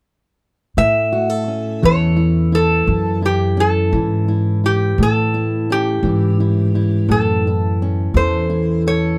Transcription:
0.77 upright bass A2, steel-string acoustic guitar A2, resonator guitar played with a steel bar E5
1.12 steel-string acoustic guitar F#4
1.30 steel-string acoustic guitar A4
1.48 steel-string acoustic guitar C#4
1.82 upright bass E2, steel-string acoustic guitar E3 A4, resonator guitar played with a steel bar C#5
2.16 steel-string acoustic guitar E4
2.52 steel-string acoustic guitar E4, resonator guitar played with a steel bar A4
2.87 upright bass F#2
3.22 steel-string acoustic guitar E4, resonator guitar played with a steel bar G4
3.57 steel-string acoustic guitar C#4, resonator guitar played with a steel bar A4
3.93 upright bass G#2, steel-string acoustic guitar E3 E4
4.28 steel-string acoustic guitar E4
4.64 steel-string acoustic guitar E4, resonator guitar played with a steel bar G4
4.98 upright bass A2, steel-string acoustic guitar A2
5.03 resonator guitar played with a steel bar A4
5.34 steel-string acoustic guitar E4
5.70 steel-string acoustic guitar C#4, resonator guitar played with a steel bar G4
6.03 upright bass G#2, steel-string acoustic guitar E3 E4
6.40 steel-string acoustic guitar E4
6.75 steel-string acoustic guitar E4
7.08 upright bass F#2, steel-string acoustic guitar A2, resonator guitar played with a steel bar A4
7.47 steel-string acoustic guitar E4
7.82 steel-string acoustic guitar C#4
8.14 upright bass E2, steel-string acoustic guitar E3 A4, resonator guitar played with a steel bar C5
8.50 steel-string acoustic guitar E4
8.87 steel-string acoustic guitar A4, resonator guitar played with a steel bar C#5

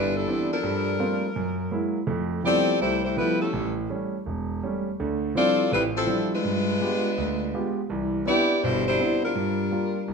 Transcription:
Already playing: grand piano G1, saxophone section G3 D4 E4 B4
0.16 saxophone section G3 D4 E4 A4
0.27 grand piano E3 B3 C4 D4
0.52 saxophone section F3 D4 A4 A#4
0.63 grand piano G2 G3
0.99 grand piano G3 A3 A#3 C4 F4
1.36 grand piano F#2
1.71 grand piano F#3 G#3 A#3 E4
2.07 grand piano F2 A3
2.43 grand piano F3 G3 A3 B3 E4, saxophone section C4 G4 A4 D5
2.81 grand piano C2, saxophone section A3 E4 G4 C5
3.05 saxophone section A3 E4 G4 C5
3.16 grand piano F3 G3 A3 B3 E4, saxophone section A3 E4 G4 B4
3.41 saxophone section G3 C#4 E4 A4
3.53 grand piano A1
3.89 grand piano G3 A3 C#4
4.26 grand piano E1
4.63 grand piano G3 A3 C#4
5.00 grand piano D2 D3
5.35 grand piano F3 G3 C4 D4 E4, saxophone section C4 F4 A4 D5
5.71 grand piano A1 A2, saxophone section G3 C4 E4 B4
5.97 saxophone section F3 C4 E4 A4
6.07 grand piano F3 G3 C4 D4 E4
6.34 saxophone section G#3 D4 F4 B4
6.44 grand piano G2
6.81 grand piano G#3 B3 F4 G4
7.18 grand piano D2
7.54 grand piano G#3 B3 F4 G4
7.90 grand piano C2 E3
8.25 grand piano B3 C4 D4 E4, saxophone section B3 E4 G4 D5
8.64 grand piano G1 B2, saxophone section G3 D4 E4 C5
8.87 saxophone section G3 D4 E4 C5
8.99 grand piano B3 C4 D4 E4
9.24 saxophone section G3 D4 F4 A#4
9.35 grand piano G2
9.71 grand piano G3 A#3 F4
10.08 grand piano C2

